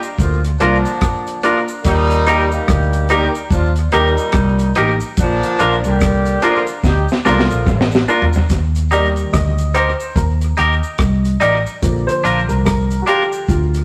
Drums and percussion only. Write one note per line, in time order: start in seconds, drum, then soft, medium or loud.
0.03 closed hi-hat soft
0.03 cabasa medium
0.19 kick loud
0.19 closed hi-hat medium
0.19 cabasa medium
0.44 closed hi-hat medium
0.44 cabasa medium
0.60 closed hi-hat medium
0.60 cabasa medium
0.85 closed hi-hat soft
0.85 cabasa medium
1.01 kick loud
1.01 cross-stick loud
1.01 closed hi-hat medium
1.01 cabasa medium
1.27 closed hi-hat medium
1.27 cabasa medium
1.43 closed hi-hat medium
1.43 cabasa medium
1.68 cabasa medium
1.84 kick loud
1.84 closed hi-hat loud
1.84 cabasa medium
2.10 closed hi-hat medium
2.10 cabasa medium
2.27 closed hi-hat medium
2.27 cabasa medium
2.52 cabasa medium
2.68 kick loud
2.68 cross-stick loud
2.68 closed hi-hat loud
2.68 cabasa medium
2.93 closed hi-hat soft
2.93 cabasa soft
3.09 closed hi-hat medium
3.09 cabasa medium
3.35 closed hi-hat soft
3.35 cabasa medium
3.51 kick loud
3.51 closed hi-hat medium
3.51 cabasa medium
3.76 closed hi-hat medium
3.76 cabasa medium
3.92 closed hi-hat medium
3.92 cabasa medium
4.17 closed hi-hat soft
4.17 cabasa medium
4.32 kick loud
4.32 cross-stick loud
4.32 closed hi-hat medium
4.32 cabasa medium
4.59 closed hi-hat medium
4.59 cabasa medium
4.75 closed hi-hat medium
4.75 cabasa medium
5.00 cabasa medium
5.17 kick loud
5.17 closed hi-hat loud
5.17 cabasa medium
5.43 closed hi-hat medium
5.43 cabasa medium
5.59 closed hi-hat medium
5.59 cabasa medium
5.84 closed hi-hat soft
5.84 cabasa medium
6.00 kick loud
6.00 cross-stick loud
6.00 closed hi-hat loud
6.00 cabasa medium
6.25 closed hi-hat medium
6.25 cabasa medium
6.42 closed hi-hat medium
6.42 cabasa medium
6.67 closed hi-hat soft
6.67 cabasa medium
6.84 kick loud
6.84 snare medium
6.84 cabasa medium
7.08 snare medium
7.08 cabasa soft
7.25 snare medium
7.25 cabasa medium
7.39 snare medium
7.50 cabasa medium
7.67 kick loud
7.67 mid tom loud
7.67 cabasa medium
7.81 snare medium
7.91 snare loud
7.91 cabasa soft
8.08 cabasa medium
8.22 floor tom loud
8.33 floor tom medium
8.33 cabasa medium
8.49 kick loud
8.49 closed hi-hat loud
8.49 cabasa medium
8.75 closed hi-hat medium
8.75 cabasa medium
8.91 closed hi-hat medium
8.91 cabasa medium
9.16 closed hi-hat soft
9.16 cabasa medium
9.34 kick loud
9.34 cross-stick loud
9.34 closed hi-hat medium
9.34 cabasa medium
9.58 closed hi-hat soft
9.58 cabasa medium
9.75 closed hi-hat medium
9.75 cabasa medium
10.00 cabasa medium
10.16 kick loud
10.16 closed hi-hat medium
10.16 cabasa medium
10.41 closed hi-hat soft
10.41 cabasa soft
10.57 closed hi-hat medium
10.57 cabasa soft
10.83 cabasa medium
10.98 kick loud
10.98 cross-stick loud
10.98 closed hi-hat medium
10.98 cabasa medium
11.25 closed hi-hat medium
11.25 cabasa soft
11.41 closed hi-hat medium
11.41 cabasa medium
11.66 cabasa medium
11.83 kick loud
11.83 closed hi-hat loud
11.83 cabasa medium
12.09 closed hi-hat medium
12.09 cabasa medium
12.25 closed hi-hat medium
12.25 cabasa medium
12.49 closed hi-hat soft
12.49 cabasa medium
12.66 kick loud
12.66 cross-stick loud
12.66 closed hi-hat loud
12.66 cabasa medium
12.91 closed hi-hat soft
12.91 cabasa medium
13.07 closed hi-hat medium
13.07 cabasa medium
13.32 cabasa medium
13.49 kick loud
13.49 closed hi-hat medium
13.49 cabasa medium
13.74 closed hi-hat medium
13.74 cabasa soft